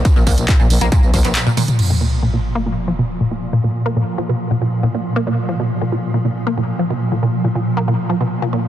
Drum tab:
CC |----------------|x---------------|----------------|----------------|
HH |x-oxx-oxx-oxx-ox|----------------|----------------|----------------|
TB |xxxxxxxxxxxxxxxx|----------------|----------------|----------------|
CP |----x------xx---|----------------|----------------|----------------|
T1 |--------------o-|----------------|----------------|----------------|
T2 |---------------o|----------------|----------------|----------------|
BD |o-o-o---o-o-----|----------------|----------------|----------------|

CC |----------------|
HH |----------------|
TB |----------------|
CP |----------------|
T1 |----------------|
T2 |----------------|
BD |----------------|